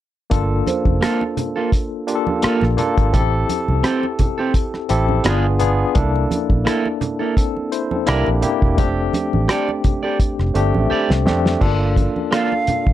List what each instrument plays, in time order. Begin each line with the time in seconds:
0.30 fingered electric bass G1, tine electric piano A#3 D4 F4 A4, kick, closed hi-hat, low conga
0.67 celesta C5, closed hi-hat, high conga
0.85 fingered electric bass F1, kick, high conga
1.01 clean electric guitar A#3 F4 A4, cross-stick, closed hi-hat, muted conga
1.21 muted conga
1.37 closed hi-hat, low conga
1.56 clean electric guitar A#3 F4 A4
1.72 kick, closed hi-hat, muted conga
2.07 tine electric piano A#3 D4 F4 G4, closed hi-hat
2.15 tine electric piano A4
2.27 high conga
2.42 clean electric guitar A#3 F4 A4, muted fingered electric bass stroke, cross-stick, closed hi-hat
2.61 fingered electric bass A#1, cross-stick, muted conga
2.77 tine electric piano A#3 D4 F4 A4, closed hi-hat, low conga
2.98 fingered electric bass G#1, kick, closed hi-hat
3.13 fingered electric bass A1, tine electric piano C4 E4 G4 A4, kick, closed hi-hat, low conga
3.49 closed hi-hat, high conga
3.68 fingered electric bass C2, high conga
3.83 clean electric guitar C4 G4 A4, cross-stick, closed hi-hat
4.03 muted conga
4.19 kick, closed hi-hat, low conga
4.38 clean electric guitar C4 G4 A4
4.54 kick, closed hi-hat
4.74 cross-stick, muted conga
4.89 fingered electric bass A1, tine electric piano C4 E4 G4 A4, closed hi-hat
5.09 high conga
5.24 fingered electric bass G1, tine electric piano B3 D4 F4 G#4, clean electric guitar B3 F4 G#4, cross-stick, closed hi-hat, muted conga
5.59 tine electric piano B3 D4 F4 G#4, closed hi-hat, low conga
5.94 fingered electric bass C2, tine electric piano A#3 D4 E4 A4, kick, closed hi-hat, muted conga, low conga
6.16 muted conga
6.31 closed hi-hat, high conga
6.50 fingered electric bass A#1, kick, high conga
6.65 clean electric guitar A#3 E4 A4, cross-stick, closed hi-hat, muted conga
6.85 muted conga
7.01 closed hi-hat, low conga
7.19 clean electric guitar A#3 E4 A4
7.37 tine electric piano C4 A4, kick, closed hi-hat
7.57 muted conga
7.72 tine electric piano E4 C5, closed hi-hat
7.91 tine electric piano C4 A4, high conga
8.07 fingered electric bass C2, tine electric piano A#3 D4 E4 G4, clean electric guitar E4 A#4 D5, cross-stick, closed hi-hat, muted conga
8.26 fingered electric bass A#1, muted conga
8.41 tine electric piano A#3 D4 E4 G4, closed hi-hat, low conga
8.62 fingered electric bass E1, kick
8.77 fingered electric bass F1, tine electric piano A3 C4 D4 G4, kick, closed hi-hat, muted conga, low conga
9.13 closed hi-hat, high conga
9.33 fingered electric bass A1, high conga
9.48 clean electric guitar G4 A4 D5, cross-stick, closed hi-hat
9.69 muted conga
9.84 kick, closed hi-hat, low conga
10.03 clean electric guitar G4 A4 D5
10.20 kick, closed hi-hat
10.39 fingered electric bass F1, cross-stick, muted conga
10.54 fingered electric bass G1, tine electric piano A3 C4 D4 G4, celesta C5, closed hi-hat
10.74 fingered electric bass A1, celesta E5, high conga
10.90 clean electric guitar G4 A4 D5, muted fingered electric bass stroke
11.09 fingered electric bass C2, snare, muted conga
11.25 fingered electric bass F2, tine electric piano A3 C4 D4 G4, snare, low conga
11.46 snare
11.60 fingered electric bass G1, tine electric piano A#3 D4 F4 A4, kick, crash
11.96 kick, closed hi-hat, high conga
12.16 high conga
12.31 clean electric guitar A#3 F4 A4, celesta D5, flute F5, cross-stick, closed hi-hat
12.52 muted conga
12.67 muted fingered electric bass stroke, closed hi-hat, low conga
12.87 fingered electric bass A1, kick